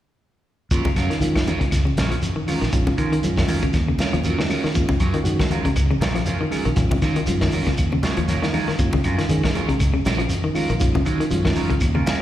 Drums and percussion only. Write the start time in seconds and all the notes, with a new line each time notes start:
0.71 kick, closed hi-hat, shekere
0.85 kick, high conga
0.96 kick, snare, closed hi-hat, claves, shekere
1.11 snare, closed hi-hat
1.21 closed hi-hat, shekere
1.36 kick, snare, high conga, claves
1.47 closed hi-hat, high conga, shekere
1.61 kick, closed hi-hat
1.71 kick, snare, closed hi-hat, claves, shekere
1.87 high conga
1.97 snare, closed hi-hat, high conga, shekere
2.11 closed hi-hat, claves
2.22 closed hi-hat, high conga, shekere
2.48 open hi-hat, high conga, claves, shekere
2.62 snare, closed hi-hat
2.73 kick, closed hi-hat, shekere
2.87 kick, high conga
2.98 kick, closed hi-hat, claves, shekere
3.13 closed hi-hat
3.23 closed hi-hat, shekere
3.37 kick, snare, high conga, claves
3.48 open hi-hat, high conga, shekere
3.62 kick, closed hi-hat
3.73 kick, snare, closed hi-hat, claves, shekere
3.99 snare, closed hi-hat, high conga, shekere
4.13 closed hi-hat, claves
4.24 closed hi-hat, high conga, shekere
4.40 snare
4.50 open hi-hat, claves, shekere
4.65 snare
4.75 kick, closed hi-hat, shekere
4.89 kick, high conga
5.00 kick, closed hi-hat, claves, shekere
5.14 closed hi-hat
5.25 closed hi-hat, shekere
5.39 kick, snare, high conga, claves
5.51 closed hi-hat, high conga, shekere
5.65 kick, closed hi-hat
5.76 kick, closed hi-hat, claves, shekere
5.91 high conga
6.01 snare, closed hi-hat, high conga, shekere
6.15 snare, closed hi-hat, claves
6.26 closed hi-hat, high conga, shekere
6.52 open hi-hat, claves, shekere
6.65 closed hi-hat
6.76 kick, closed hi-hat, shekere
6.91 kick, high conga
7.02 kick, snare, closed hi-hat, claves, shekere
7.16 closed hi-hat
7.27 closed hi-hat, shekere
7.41 kick, snare, claves
7.52 open hi-hat, high conga, shekere
7.66 kick, snare, closed hi-hat
7.77 kick, closed hi-hat, claves, shekere
7.92 high conga
8.03 snare, closed hi-hat, high conga, shekere
8.17 closed hi-hat, claves
8.28 snare, closed hi-hat, high conga, shekere
8.43 snare
8.53 open hi-hat, high conga, claves, shekere
8.69 snare
8.79 kick, closed hi-hat, shekere
8.93 kick, high conga
9.04 kick, closed hi-hat, claves, shekere
9.19 snare, closed hi-hat
9.29 closed hi-hat, shekere
9.43 kick, snare, claves
9.55 closed hi-hat, high conga, shekere
9.69 kick, closed hi-hat
9.80 kick, closed hi-hat, claves, shekere
10.05 snare, closed hi-hat, high conga, shekere
10.19 closed hi-hat, claves
10.29 closed hi-hat, high conga, shekere
10.55 open hi-hat, claves, shekere
10.70 closed hi-hat
10.80 kick, closed hi-hat, shekere
10.95 kick, high conga
11.06 kick, closed hi-hat, claves, shekere
11.21 closed hi-hat
11.31 closed hi-hat, shekere
11.45 kick, snare, high conga, claves
11.56 open hi-hat, high conga, shekere
11.70 kick, closed hi-hat
11.80 kick, closed hi-hat, claves, shekere
11.95 high conga
12.06 snare, closed hi-hat, high conga, shekere